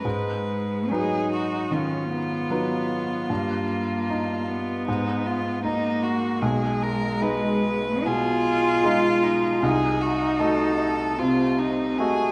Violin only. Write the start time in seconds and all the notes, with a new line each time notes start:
0.04 B4
0.91 G#4
1.32 F#4
1.72 F4
4.87 D#4
5.27 F4
5.64 D#4
6.03 F#4
6.42 G#4
6.82 A#4
7.22 B4
8.06 G#4
8.85 F4
9.23 D#4
9.62 G#4
10.01 F#4
10.40 A4
11.19 F4
11.59 D#4
11.98 G#4